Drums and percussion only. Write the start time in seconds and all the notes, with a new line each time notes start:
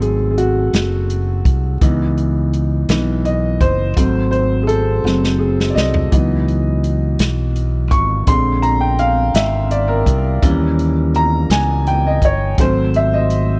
0.02 closed hi-hat
0.38 closed hi-hat
0.74 snare, closed hi-hat
1.10 closed hi-hat
1.45 kick, closed hi-hat
1.81 kick, closed hi-hat
2.18 closed hi-hat
2.53 closed hi-hat
2.89 snare, closed hi-hat
3.25 closed hi-hat
3.61 kick, closed hi-hat
3.97 kick, closed hi-hat
4.33 closed hi-hat
4.69 closed hi-hat
5.06 snare
5.24 snare
5.60 snare
5.77 snare
5.94 floor tom
6.12 kick, closed hi-hat
6.48 closed hi-hat
6.84 closed hi-hat
7.19 snare, closed hi-hat
7.56 closed hi-hat
7.91 kick, closed hi-hat
8.27 kick, closed hi-hat
8.63 closed hi-hat
8.99 closed hi-hat
9.35 snare, closed hi-hat
9.71 closed hi-hat
10.06 kick, closed hi-hat
10.42 kick, closed hi-hat
10.79 closed hi-hat
11.14 closed hi-hat
11.50 snare, closed hi-hat
11.87 closed hi-hat
12.22 kick, closed hi-hat
12.58 kick, closed hi-hat
12.94 closed hi-hat
13.30 closed hi-hat